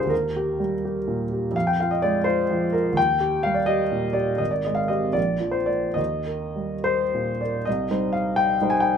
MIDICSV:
0, 0, Header, 1, 2, 480
1, 0, Start_track
1, 0, Key_signature, -3, "major"
1, 0, Tempo, 476569
1, 113, Time_signature, 6, 3, 24, 8
1, 4430, Tempo, 516796
1, 5390, Tempo, 568182
1, 6830, Tempo, 530035
1, 7310, Tempo, 462606
1, 8668, End_track
2, 0, Start_track
2, 0, Title_t, "Grand piano"
2, 0, Program_c, 0, 0
2, 0, Control_c, 0, 64, 127
2, 0, Note_on_c, 0, 38, 41
2, 0, Note_on_c, 0, 50, 47
2, 0, Note_on_c, 0, 65, 40
2, 0, Note_on_c, 0, 67, 63
2, 0, Note_on_c, 0, 68, 68
2, 0, Note_on_c, 0, 70, 53
2, 0, Note_on_c, 0, 72, 60
2, 55, Note_on_c, 0, 39, 48
2, 96, Note_off_c, 0, 70, 0
2, 96, Note_on_c, 0, 70, 68
2, 107, Note_off_c, 0, 72, 0
2, 115, Note_off_c, 0, 65, 0
2, 130, Control_c, 0, 64, 0
2, 132, Note_off_c, 0, 68, 0
2, 133, Note_off_c, 0, 38, 0
2, 138, Note_off_c, 0, 67, 0
2, 140, Note_off_c, 0, 50, 0
2, 264, Control_c, 0, 64, 127
2, 368, Note_on_c, 0, 67, 49
2, 591, Note_off_c, 0, 70, 0
2, 600, Note_on_c, 0, 55, 40
2, 749, Note_off_c, 0, 67, 0
2, 857, Note_on_c, 0, 67, 47
2, 987, Note_off_c, 0, 55, 0
2, 1083, Note_on_c, 0, 46, 47
2, 1234, Note_off_c, 0, 67, 0
2, 1331, Note_on_c, 0, 67, 39
2, 1463, Note_off_c, 0, 46, 0
2, 1489, Note_off_c, 0, 39, 0
2, 1523, Note_on_c, 0, 41, 56
2, 1564, Note_off_c, 0, 67, 0
2, 1571, Note_on_c, 0, 77, 75
2, 1578, Control_c, 0, 64, 0
2, 1682, Note_on_c, 0, 79, 65
2, 1684, Note_off_c, 0, 77, 0
2, 1723, Control_c, 0, 64, 127
2, 1800, Note_off_c, 0, 79, 0
2, 1814, Note_on_c, 0, 77, 68
2, 1834, Note_on_c, 0, 65, 43
2, 1923, Note_on_c, 0, 75, 63
2, 1925, Note_off_c, 0, 77, 0
2, 2038, Note_on_c, 0, 74, 75
2, 2039, Note_off_c, 0, 75, 0
2, 2050, Note_on_c, 0, 56, 44
2, 2199, Note_off_c, 0, 65, 0
2, 2258, Note_on_c, 0, 72, 76
2, 2278, Note_off_c, 0, 74, 0
2, 2281, Note_on_c, 0, 65, 45
2, 2429, Note_off_c, 0, 56, 0
2, 2523, Note_on_c, 0, 53, 47
2, 2664, Note_off_c, 0, 65, 0
2, 2747, Note_on_c, 0, 70, 67
2, 2748, Note_off_c, 0, 72, 0
2, 2762, Note_on_c, 0, 65, 39
2, 2900, Note_off_c, 0, 53, 0
2, 2933, Note_off_c, 0, 41, 0
2, 2948, Note_on_c, 0, 39, 51
2, 2986, Note_off_c, 0, 70, 0
2, 2993, Note_off_c, 0, 65, 0
2, 2993, Note_on_c, 0, 79, 85
2, 3008, Control_c, 0, 64, 0
2, 3184, Control_c, 0, 64, 127
2, 3228, Note_on_c, 0, 67, 52
2, 3456, Note_on_c, 0, 77, 81
2, 3460, Note_off_c, 0, 79, 0
2, 3479, Note_on_c, 0, 55, 42
2, 3569, Note_on_c, 0, 74, 61
2, 3577, Note_off_c, 0, 77, 0
2, 3604, Note_off_c, 0, 67, 0
2, 3688, Note_on_c, 0, 75, 83
2, 3693, Note_off_c, 0, 74, 0
2, 3707, Note_on_c, 0, 67, 46
2, 3850, Note_off_c, 0, 55, 0
2, 3947, Note_on_c, 0, 46, 46
2, 4086, Note_off_c, 0, 67, 0
2, 4161, Note_on_c, 0, 74, 66
2, 4174, Note_on_c, 0, 67, 38
2, 4175, Note_off_c, 0, 75, 0
2, 4335, Note_off_c, 0, 46, 0
2, 4369, Note_off_c, 0, 39, 0
2, 4414, Note_on_c, 0, 75, 68
2, 4420, Note_on_c, 0, 32, 43
2, 4421, Note_off_c, 0, 74, 0
2, 4428, Note_off_c, 0, 67, 0
2, 4448, Control_c, 0, 64, 0
2, 4533, Note_on_c, 0, 74, 58
2, 4540, Note_off_c, 0, 75, 0
2, 4616, Control_c, 0, 64, 127
2, 4657, Note_off_c, 0, 74, 0
2, 4658, Note_on_c, 0, 75, 56
2, 4674, Note_on_c, 0, 56, 40
2, 4753, Note_on_c, 0, 77, 69
2, 4779, Note_off_c, 0, 75, 0
2, 4879, Note_on_c, 0, 75, 70
2, 4886, Note_off_c, 0, 77, 0
2, 4890, Note_on_c, 0, 60, 36
2, 4891, Note_on_c, 0, 67, 43
2, 5050, Note_off_c, 0, 56, 0
2, 5110, Note_on_c, 0, 74, 72
2, 5113, Note_off_c, 0, 60, 0
2, 5113, Note_off_c, 0, 67, 0
2, 5116, Note_off_c, 0, 32, 0
2, 5118, Note_on_c, 0, 34, 44
2, 5133, Note_off_c, 0, 75, 0
2, 5160, Control_c, 0, 64, 0
2, 5311, Control_c, 0, 64, 127
2, 5362, Note_on_c, 0, 53, 45
2, 5460, Note_on_c, 0, 72, 60
2, 5490, Note_off_c, 0, 74, 0
2, 5584, Note_on_c, 0, 74, 64
2, 5597, Note_off_c, 0, 72, 0
2, 5602, Note_on_c, 0, 70, 35
2, 5603, Note_on_c, 0, 58, 32
2, 5748, Note_off_c, 0, 53, 0
2, 5819, Note_on_c, 0, 75, 66
2, 5823, Note_off_c, 0, 70, 0
2, 5824, Note_off_c, 0, 34, 0
2, 5824, Note_off_c, 0, 58, 0
2, 5835, Note_on_c, 0, 39, 44
2, 5839, Note_off_c, 0, 74, 0
2, 5874, Control_c, 0, 64, 0
2, 6047, Control_c, 0, 64, 127
2, 6093, Note_on_c, 0, 70, 40
2, 6341, Note_on_c, 0, 55, 33
2, 6493, Note_off_c, 0, 70, 0
2, 6579, Note_on_c, 0, 72, 78
2, 6586, Note_on_c, 0, 70, 37
2, 6732, Note_off_c, 0, 55, 0
2, 6837, Note_on_c, 0, 46, 43
2, 6979, Note_off_c, 0, 70, 0
2, 7063, Note_off_c, 0, 75, 0
2, 7076, Note_off_c, 0, 72, 0
2, 7077, Note_on_c, 0, 74, 52
2, 7097, Note_on_c, 0, 70, 34
2, 7228, Note_off_c, 0, 46, 0
2, 7263, Note_off_c, 0, 39, 0
2, 7299, Note_on_c, 0, 75, 71
2, 7308, Note_off_c, 0, 74, 0
2, 7319, Note_off_c, 0, 70, 0
2, 7327, Note_on_c, 0, 36, 49
2, 7328, Control_c, 0, 64, 0
2, 7510, Control_c, 0, 64, 127
2, 7550, Note_off_c, 0, 36, 0
2, 7552, Note_on_c, 0, 55, 44
2, 7560, Note_on_c, 0, 63, 41
2, 7564, Note_on_c, 0, 72, 49
2, 7781, Note_off_c, 0, 75, 0
2, 7786, Note_on_c, 0, 77, 69
2, 8028, Note_off_c, 0, 77, 0
2, 8032, Note_on_c, 0, 79, 83
2, 8232, Note_off_c, 0, 55, 0
2, 8236, Note_off_c, 0, 63, 0
2, 8238, Note_off_c, 0, 72, 0
2, 8293, Note_on_c, 0, 63, 47
2, 8295, Note_on_c, 0, 55, 45
2, 8304, Note_on_c, 0, 72, 49
2, 8382, Note_on_c, 0, 80, 76
2, 8395, Note_off_c, 0, 79, 0
2, 8490, Note_on_c, 0, 79, 72
2, 8508, Note_off_c, 0, 80, 0
2, 8668, Note_off_c, 0, 55, 0
2, 8668, Note_off_c, 0, 63, 0
2, 8668, Note_off_c, 0, 72, 0
2, 8668, Note_off_c, 0, 79, 0
2, 8668, End_track
0, 0, End_of_file